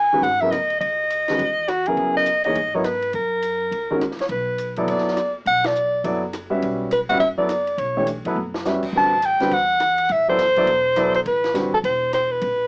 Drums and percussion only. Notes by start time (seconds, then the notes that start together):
0.24 ride
0.52 cross-stick, hi-hat pedal, ride
0.70 ride
0.81 ride
1.10 hi-hat pedal, ride
1.28 snare, ride
1.39 ride
1.68 cross-stick, hi-hat pedal, ride
1.86 ride
1.97 ride
2.26 hi-hat pedal, ride
2.44 ride
2.55 ride
2.84 cross-stick, hi-hat pedal, ride
3.02 ride
3.13 ride
3.42 hi-hat pedal, ride
3.72 ride
4.01 cross-stick, hi-hat pedal, ride
4.11 snare
4.19 snare, ride
4.29 ride
4.58 hi-hat pedal, ride
4.76 ride
4.88 ride
4.98 snare
5.08 snare
5.17 cross-stick, hi-hat pedal, ride
5.46 ride
5.64 snare, ride
5.75 hi-hat pedal
6.04 ride
6.33 cross-stick, hi-hat pedal, ride
6.62 ride
6.91 hi-hat pedal, ride
7.09 ride
7.20 ride
7.49 cross-stick, hi-hat pedal, ride
7.67 ride
7.78 ride
8.07 hi-hat pedal, ride
8.25 ride
8.37 high tom
8.54 snare
8.65 snare, hi-hat pedal
8.83 kick, crash
9.22 hi-hat pedal, ride
9.40 snare, ride
9.51 ride
9.80 cross-stick, hi-hat pedal, ride
9.98 ride
10.09 ride
10.39 snare, hi-hat pedal, ride
10.56 kick, ride
10.67 ride
10.96 cross-stick, hi-hat pedal, ride
11.14 ride
11.26 ride
11.44 snare, ride
11.55 snare, hi-hat pedal, ride
11.73 kick
11.84 ride
12.13 cross-stick, hi-hat pedal, ride
12.41 ride